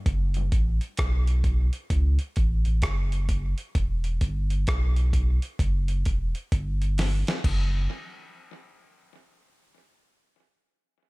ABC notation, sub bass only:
X:1
M:4/4
L:1/16
Q:"Swing 16ths" 1/4=65
K:Edor
V:1 name="Sub bass" clef=bass
F,,,2 A,,, z B,,,3 z C,, z A,,, A,,, F,,,3 z | E,,,2 G,,,2 B,,,3 z F,,,2 E,,, z G,,,3 z | F,,,2 z12 z2 |]